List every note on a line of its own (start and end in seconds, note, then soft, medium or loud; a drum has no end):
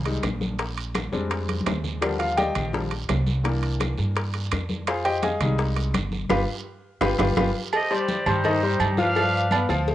0.00 0.19 C2 medium
0.00 0.54 F3 medium
0.05 0.21 G3 soft
0.05 0.21 G#3 soft
0.05 0.21 D#4 medium
0.05 high bongo soft
0.05 high conga soft
0.05 high timbale medium
0.23 1.07 A#1 medium
0.23 high bongo soft
0.23 low bongo medium
0.23 high conga medium
0.23 high timbale medium
0.23 short guiro medium
0.23 claves medium
0.41 high bongo soft
0.41 high conga medium
0.41 short guiro medium
0.59 high bongo medium
0.59 high timbale medium
0.59 long guiro medium
0.77 high conga soft
0.77 high timbale medium
0.94 high bongo medium
0.94 high conga loud
0.94 high timbale medium
0.94 short guiro medium
0.94 claves medium
1.12 1.62 F2 medium
1.12 1.97 G3 medium
1.12 1.98 G#3 medium
1.12 1.98 C4 medium
1.12 1.98 D4 medium
1.12 high bongo soft
1.12 high conga soft
1.12 short guiro medium
1.30 high bongo medium
1.30 high conga soft
1.30 high timbale medium
1.30 long guiro medium
1.49 high bongo soft
1.49 high conga medium
1.49 high timbale medium
1.61 high conga loud
1.66 2.49 D#2 medium
1.66 high bongo soft
1.66 low bongo medium
1.66 high timbale medium
1.66 low timbale medium
1.66 short guiro medium
1.66 claves medium
1.72 low conga medium
1.84 high bongo soft
1.84 low conga medium
1.84 short guiro medium
2.01 3.41 D3 medium
2.01 2.72 F3 medium
2.01 2.72 G3 medium
2.01 2.19 D4 soft
2.01 2.19 G4 soft
2.01 2.19 A#4 soft
2.01 2.19 D5 medium
2.01 high bongo medium
2.01 high conga soft
2.01 high timbale medium
2.01 long guiro medium
2.01 claves medium
2.19 2.37 F4 medium
2.19 2.37 F5 medium
2.19 high conga soft
2.19 high timbale medium
2.37 2.71 G4 medium
2.37 2.71 D5 medium
2.37 2.71 D#5 medium
2.37 2.70 G5 loud
2.37 high bongo medium
2.37 high conga loud
2.37 high timbale medium
2.37 short guiro medium
2.55 3.05 A#1 medium
2.55 high bongo soft
2.55 high conga soft
2.55 low conga medium
2.55 high timbale medium
2.55 short guiro medium
2.55 claves medium
2.73 2.89 F3 medium
2.73 2.89 G3 soft
2.73 2.89 D4 medium
2.73 high bongo medium
2.73 high conga soft
2.73 low conga medium
2.73 long guiro medium
2.91 high bongo soft
2.91 high conga soft
2.91 high timbale medium
3.09 3.92 C2 medium
3.09 high bongo soft
3.09 low bongo medium
3.09 high conga medium
3.09 high timbale medium
3.09 low timbale medium
3.09 short guiro medium
3.09 claves medium
3.26 high bongo soft
3.26 high conga medium
3.26 short guiro medium
3.44 4.83 E3 medium
3.44 4.83 A#3 medium
3.44 4.84 D4 medium
3.44 high bongo medium
3.44 high conga soft
3.44 high timbale medium
3.44 long guiro medium
3.63 high conga soft
3.63 high timbale medium
3.80 high bongo medium
3.80 high conga loud
3.80 high timbale medium
3.80 short guiro medium
3.80 claves medium
3.98 4.48 G2 medium
3.98 high bongo soft
3.98 high conga soft
3.98 short guiro medium
4.16 high bongo medium
4.16 high conga soft
4.16 high timbale medium
4.16 long guiro medium
4.34 high bongo soft
4.34 high conga soft
4.34 high timbale medium
4.51 5.35 F2 medium
4.51 high bongo soft
4.51 low bongo medium
4.51 high conga soft
4.51 high timbale medium
4.51 short guiro medium
4.51 claves medium
4.69 high bongo soft
4.69 high conga medium
4.69 short guiro medium
4.87 5.05 F4 medium
4.87 5.05 G#4 medium
4.87 5.04 C5 medium
4.87 5.05 F5 medium
4.87 high bongo medium
4.87 high conga soft
4.87 high timbale medium
4.87 long guiro medium
4.87 claves medium
5.05 5.23 G4 medium
5.05 5.23 C5 medium
5.05 5.22 D#5 medium
5.05 5.22 G5 loud
5.05 high conga soft
5.05 high timbale medium
5.22 5.57 G#4 medium
5.22 5.57 D#5 medium
5.22 5.57 F5 medium
5.22 5.56 G#5 medium
5.22 high bongo medium
5.22 high conga loud
5.22 high timbale medium
5.22 short guiro medium
5.40 5.91 C2 loud
5.40 5.92 G3 medium
5.40 5.92 G#3 medium
5.40 5.92 D#4 medium
5.40 high bongo soft
5.40 high conga soft
5.40 low conga medium
5.40 high timbale medium
5.40 short guiro medium
5.40 claves medium
5.58 high bongo medium
5.58 long guiro medium
5.76 high bongo soft
5.76 high conga soft
5.76 high timbale medium
5.94 6.28 G1 medium
5.94 high bongo soft
5.94 low bongo medium
5.94 high conga medium
5.94 high timbale loud
5.94 short guiro medium
5.94 claves medium
6.12 high bongo soft
6.12 high conga medium
6.12 short guiro medium
6.29 6.43 G1 loud
6.29 6.41 F4 loud
6.29 6.41 G4 loud
6.29 6.41 B4 loud
6.29 high bongo loud
6.29 high conga loud
6.29 high timbale loud
6.29 long guiro loud
6.29 claves loud
7.01 7.15 G1 medium
7.01 7.13 F4 loud
7.01 7.13 G4 loud
7.01 7.13 B4 loud
7.01 high bongo loud
7.01 high conga loud
7.01 high timbale loud
7.01 long guiro loud
7.01 claves loud
7.19 7.33 G1 loud
7.19 7.30 F4 loud
7.19 7.30 G4 medium
7.19 7.30 B4 medium
7.19 high bongo loud
7.19 high conga loud
7.19 high timbale loud
7.19 long guiro loud
7.19 claves medium
7.37 7.50 G1 medium
7.37 7.48 F4 loud
7.37 7.49 G4 medium
7.37 7.49 B4 medium
7.37 high bongo loud
7.37 high conga loud
7.37 high timbale loud
7.37 long guiro loud
7.37 claves loud
7.73 7.91 G4 medium
7.73 8.26 C5 medium
7.73 7.90 D#5 medium
7.73 cowbell loud
7.73 high conga soft
7.73 low agogo loud
7.73 long guiro medium
7.73 claves medium
7.91 8.20 G3 medium
7.91 8.20 G4 medium
7.91 8.27 G4 medium
7.91 8.20 C5 medium
7.91 8.27 D5 medium
7.91 high conga soft
7.91 low agogo medium
8.08 cowbell medium
8.08 high conga loud
8.08 short guiro medium
8.26 8.76 G2 loud
8.26 8.41 G3 medium
8.26 8.95 D#4 medium
8.26 8.41 G4 medium
8.26 8.95 G4 medium
8.26 8.41 C5 medium
8.26 8.81 C5 medium
8.26 high conga soft
8.26 low conga medium
8.26 low agogo loud
8.26 short guiro medium
8.26 claves medium
8.44 8.59 D#3 medium
8.44 8.59 D#4 loud
8.44 8.60 D#5 medium
8.44 cowbell loud
8.44 high conga soft
8.44 low conga medium
8.44 low agogo medium
8.44 long guiro medium
8.62 8.92 G3 medium
8.62 8.92 G4 medium
8.62 8.92 C5 medium
8.62 high conga soft
8.80 9.63 G2 medium
8.80 cowbell medium
8.80 high conga medium
8.80 low agogo loud
8.80 short guiro medium
8.80 claves medium
8.97 9.13 F3 medium
8.97 9.13 F4 medium
8.97 9.66 B4 medium
8.97 9.66 D5 medium
8.97 9.13 F5 loud
8.97 9.66 F5 loud
8.97 cowbell medium
8.97 high conga medium
8.97 short guiro medium
9.15 9.45 F3 medium
9.15 9.45 F4 medium
9.15 9.46 F5 medium
9.15 cowbell loud
9.15 high conga soft
9.15 low agogo medium
9.15 long guiro medium
9.33 high conga soft
9.51 9.66 B3 medium
9.51 9.66 B4 medium
9.51 9.67 D5 medium
9.51 cowbell medium
9.51 high conga loud
9.51 low agogo loud
9.51 short guiro medium
9.51 claves medium
9.69 9.95 D2 loud
9.69 9.95 F3 medium
9.69 9.95 F4 medium
9.69 9.95 F5 medium
9.69 cowbell medium
9.69 high conga soft
9.69 low agogo medium
9.69 short guiro medium
9.87 cowbell loud
9.87 high conga soft
9.87 long guiro medium